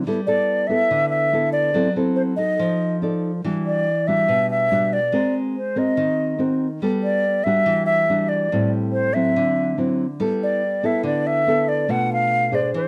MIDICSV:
0, 0, Header, 1, 3, 480
1, 0, Start_track
1, 0, Key_signature, 1, "major"
1, 0, Tempo, 422238
1, 69, Time_signature, 4, 2, 24, 8
1, 14641, End_track
2, 0, Start_track
2, 0, Title_t, "Flute"
2, 0, Program_c, 0, 73
2, 303, Note_on_c, 0, 74, 89
2, 764, Note_on_c, 0, 76, 97
2, 781, Note_off_c, 0, 74, 0
2, 1235, Note_off_c, 0, 76, 0
2, 1242, Note_on_c, 0, 76, 100
2, 1701, Note_off_c, 0, 76, 0
2, 1733, Note_on_c, 0, 74, 90
2, 2187, Note_off_c, 0, 74, 0
2, 2455, Note_on_c, 0, 72, 81
2, 2523, Note_off_c, 0, 72, 0
2, 2687, Note_on_c, 0, 75, 84
2, 3372, Note_off_c, 0, 75, 0
2, 4168, Note_on_c, 0, 74, 92
2, 4631, Note_on_c, 0, 76, 102
2, 4648, Note_off_c, 0, 74, 0
2, 5110, Note_off_c, 0, 76, 0
2, 5122, Note_on_c, 0, 76, 104
2, 5604, Note_on_c, 0, 74, 92
2, 5621, Note_off_c, 0, 76, 0
2, 6077, Note_off_c, 0, 74, 0
2, 6335, Note_on_c, 0, 72, 74
2, 6575, Note_on_c, 0, 75, 88
2, 6592, Note_off_c, 0, 72, 0
2, 7282, Note_off_c, 0, 75, 0
2, 7995, Note_on_c, 0, 74, 100
2, 8457, Note_on_c, 0, 76, 106
2, 8474, Note_off_c, 0, 74, 0
2, 8926, Note_off_c, 0, 76, 0
2, 8933, Note_on_c, 0, 76, 104
2, 9420, Note_on_c, 0, 74, 88
2, 9437, Note_off_c, 0, 76, 0
2, 9905, Note_off_c, 0, 74, 0
2, 10145, Note_on_c, 0, 72, 78
2, 10387, Note_on_c, 0, 76, 82
2, 10404, Note_off_c, 0, 72, 0
2, 11109, Note_off_c, 0, 76, 0
2, 11859, Note_on_c, 0, 74, 86
2, 12344, Note_on_c, 0, 76, 84
2, 12361, Note_off_c, 0, 74, 0
2, 12561, Note_off_c, 0, 76, 0
2, 12568, Note_on_c, 0, 74, 81
2, 12809, Note_on_c, 0, 76, 95
2, 12826, Note_off_c, 0, 74, 0
2, 13283, Note_on_c, 0, 74, 85
2, 13300, Note_off_c, 0, 76, 0
2, 13534, Note_on_c, 0, 78, 97
2, 13551, Note_off_c, 0, 74, 0
2, 13762, Note_off_c, 0, 78, 0
2, 13788, Note_on_c, 0, 77, 102
2, 14265, Note_on_c, 0, 74, 86
2, 14282, Note_off_c, 0, 77, 0
2, 14488, Note_off_c, 0, 74, 0
2, 14505, Note_on_c, 0, 72, 71
2, 14641, Note_off_c, 0, 72, 0
2, 14641, End_track
3, 0, Start_track
3, 0, Title_t, "Nylon-string guitar"
3, 0, Program_c, 1, 24
3, 78, Note_on_c, 1, 55, 62
3, 79, Note_on_c, 1, 59, 50
3, 83, Note_on_c, 1, 64, 50
3, 88, Note_on_c, 1, 69, 53
3, 214, Note_off_c, 1, 59, 0
3, 218, Note_off_c, 1, 64, 0
3, 219, Note_off_c, 1, 69, 0
3, 309, Note_on_c, 1, 59, 51
3, 314, Note_on_c, 1, 64, 49
3, 317, Note_on_c, 1, 69, 57
3, 752, Note_off_c, 1, 59, 0
3, 752, Note_off_c, 1, 64, 0
3, 755, Note_off_c, 1, 69, 0
3, 787, Note_on_c, 1, 59, 58
3, 793, Note_on_c, 1, 64, 65
3, 804, Note_on_c, 1, 69, 68
3, 1010, Note_off_c, 1, 55, 0
3, 1030, Note_on_c, 1, 50, 68
3, 1470, Note_off_c, 1, 59, 0
3, 1472, Note_off_c, 1, 64, 0
3, 1478, Note_off_c, 1, 69, 0
3, 1509, Note_on_c, 1, 59, 54
3, 1514, Note_on_c, 1, 64, 53
3, 1521, Note_on_c, 1, 69, 63
3, 1966, Note_off_c, 1, 50, 0
3, 1970, Note_off_c, 1, 59, 0
3, 1972, Note_off_c, 1, 64, 0
3, 1976, Note_off_c, 1, 69, 0
3, 1979, Note_on_c, 1, 54, 65
3, 1983, Note_on_c, 1, 64, 51
3, 1984, Note_on_c, 1, 60, 52
3, 1993, Note_on_c, 1, 69, 58
3, 2126, Note_off_c, 1, 60, 0
3, 2128, Note_off_c, 1, 64, 0
3, 2130, Note_off_c, 1, 69, 0
3, 2228, Note_on_c, 1, 60, 58
3, 2231, Note_on_c, 1, 64, 60
3, 2236, Note_on_c, 1, 69, 64
3, 2669, Note_off_c, 1, 64, 0
3, 2671, Note_off_c, 1, 60, 0
3, 2674, Note_off_c, 1, 69, 0
3, 2702, Note_on_c, 1, 63, 59
3, 2709, Note_on_c, 1, 69, 59
3, 2920, Note_off_c, 1, 54, 0
3, 2949, Note_on_c, 1, 53, 74
3, 3388, Note_off_c, 1, 63, 0
3, 3389, Note_off_c, 1, 69, 0
3, 3431, Note_on_c, 1, 63, 54
3, 3440, Note_on_c, 1, 69, 57
3, 3445, Note_on_c, 1, 74, 64
3, 3753, Note_off_c, 1, 63, 0
3, 3756, Note_off_c, 1, 69, 0
3, 3760, Note_off_c, 1, 74, 0
3, 3885, Note_off_c, 1, 53, 0
3, 3916, Note_on_c, 1, 52, 67
3, 3921, Note_on_c, 1, 55, 50
3, 3926, Note_on_c, 1, 62, 49
3, 3930, Note_on_c, 1, 66, 61
3, 4392, Note_off_c, 1, 55, 0
3, 4395, Note_off_c, 1, 66, 0
3, 4396, Note_off_c, 1, 62, 0
3, 4637, Note_on_c, 1, 55, 60
3, 4644, Note_on_c, 1, 66, 69
3, 4645, Note_on_c, 1, 62, 57
3, 4849, Note_off_c, 1, 52, 0
3, 4871, Note_on_c, 1, 47, 74
3, 5315, Note_off_c, 1, 55, 0
3, 5317, Note_off_c, 1, 62, 0
3, 5318, Note_off_c, 1, 66, 0
3, 5357, Note_on_c, 1, 55, 59
3, 5359, Note_on_c, 1, 62, 60
3, 5370, Note_on_c, 1, 66, 60
3, 5662, Note_off_c, 1, 55, 0
3, 5663, Note_off_c, 1, 62, 0
3, 5669, Note_off_c, 1, 66, 0
3, 5806, Note_off_c, 1, 47, 0
3, 5824, Note_on_c, 1, 56, 65
3, 5831, Note_on_c, 1, 60, 50
3, 5834, Note_on_c, 1, 66, 52
3, 5837, Note_on_c, 1, 70, 58
3, 6306, Note_off_c, 1, 60, 0
3, 6309, Note_off_c, 1, 66, 0
3, 6310, Note_off_c, 1, 70, 0
3, 6546, Note_on_c, 1, 60, 61
3, 6552, Note_on_c, 1, 66, 57
3, 6554, Note_on_c, 1, 70, 61
3, 6764, Note_off_c, 1, 56, 0
3, 6787, Note_on_c, 1, 51, 67
3, 7230, Note_off_c, 1, 60, 0
3, 7232, Note_off_c, 1, 66, 0
3, 7233, Note_off_c, 1, 70, 0
3, 7259, Note_on_c, 1, 60, 62
3, 7270, Note_on_c, 1, 66, 54
3, 7274, Note_on_c, 1, 70, 60
3, 7573, Note_off_c, 1, 60, 0
3, 7579, Note_off_c, 1, 66, 0
3, 7580, Note_off_c, 1, 70, 0
3, 7724, Note_off_c, 1, 51, 0
3, 7753, Note_on_c, 1, 55, 64
3, 7756, Note_on_c, 1, 59, 49
3, 7760, Note_on_c, 1, 66, 51
3, 7770, Note_on_c, 1, 69, 55
3, 8228, Note_off_c, 1, 59, 0
3, 8233, Note_off_c, 1, 66, 0
3, 8235, Note_off_c, 1, 69, 0
3, 8466, Note_off_c, 1, 55, 0
3, 8479, Note_on_c, 1, 55, 60
3, 8482, Note_on_c, 1, 62, 59
3, 8490, Note_on_c, 1, 66, 67
3, 8706, Note_on_c, 1, 52, 75
3, 9156, Note_off_c, 1, 55, 0
3, 9156, Note_off_c, 1, 62, 0
3, 9161, Note_off_c, 1, 66, 0
3, 9203, Note_on_c, 1, 55, 55
3, 9205, Note_on_c, 1, 62, 52
3, 9208, Note_on_c, 1, 66, 62
3, 9638, Note_off_c, 1, 55, 0
3, 9638, Note_off_c, 1, 62, 0
3, 9641, Note_off_c, 1, 66, 0
3, 9644, Note_off_c, 1, 52, 0
3, 9688, Note_on_c, 1, 45, 64
3, 9694, Note_on_c, 1, 55, 51
3, 9700, Note_on_c, 1, 60, 54
3, 9701, Note_on_c, 1, 64, 59
3, 10365, Note_off_c, 1, 55, 0
3, 10365, Note_off_c, 1, 60, 0
3, 10367, Note_off_c, 1, 64, 0
3, 10397, Note_on_c, 1, 54, 53
3, 10401, Note_on_c, 1, 60, 53
3, 10408, Note_on_c, 1, 64, 60
3, 10615, Note_off_c, 1, 45, 0
3, 10644, Note_on_c, 1, 50, 70
3, 11076, Note_off_c, 1, 60, 0
3, 11077, Note_off_c, 1, 54, 0
3, 11077, Note_off_c, 1, 64, 0
3, 11113, Note_on_c, 1, 54, 57
3, 11120, Note_on_c, 1, 60, 61
3, 11124, Note_on_c, 1, 64, 67
3, 11421, Note_off_c, 1, 54, 0
3, 11425, Note_off_c, 1, 60, 0
3, 11425, Note_off_c, 1, 64, 0
3, 11573, Note_off_c, 1, 50, 0
3, 11593, Note_on_c, 1, 55, 67
3, 11594, Note_on_c, 1, 59, 57
3, 11599, Note_on_c, 1, 64, 55
3, 11606, Note_on_c, 1, 69, 55
3, 12069, Note_off_c, 1, 59, 0
3, 12071, Note_off_c, 1, 64, 0
3, 12075, Note_off_c, 1, 69, 0
3, 12314, Note_on_c, 1, 59, 65
3, 12319, Note_on_c, 1, 64, 59
3, 12322, Note_on_c, 1, 69, 65
3, 12528, Note_off_c, 1, 55, 0
3, 12543, Note_on_c, 1, 50, 75
3, 12995, Note_off_c, 1, 59, 0
3, 12995, Note_off_c, 1, 69, 0
3, 12996, Note_off_c, 1, 64, 0
3, 13040, Note_on_c, 1, 59, 61
3, 13049, Note_on_c, 1, 64, 57
3, 13055, Note_on_c, 1, 69, 68
3, 13477, Note_off_c, 1, 59, 0
3, 13481, Note_off_c, 1, 64, 0
3, 13483, Note_off_c, 1, 50, 0
3, 13484, Note_off_c, 1, 69, 0
3, 13508, Note_on_c, 1, 57, 48
3, 13516, Note_on_c, 1, 47, 65
3, 13521, Note_on_c, 1, 62, 54
3, 13522, Note_on_c, 1, 65, 56
3, 14191, Note_off_c, 1, 57, 0
3, 14197, Note_off_c, 1, 62, 0
3, 14198, Note_off_c, 1, 65, 0
3, 14228, Note_on_c, 1, 62, 62
3, 14236, Note_on_c, 1, 68, 57
3, 14239, Note_on_c, 1, 72, 68
3, 14450, Note_off_c, 1, 47, 0
3, 14487, Note_on_c, 1, 52, 70
3, 14641, Note_off_c, 1, 52, 0
3, 14641, Note_off_c, 1, 62, 0
3, 14641, Note_off_c, 1, 68, 0
3, 14641, Note_off_c, 1, 72, 0
3, 14641, End_track
0, 0, End_of_file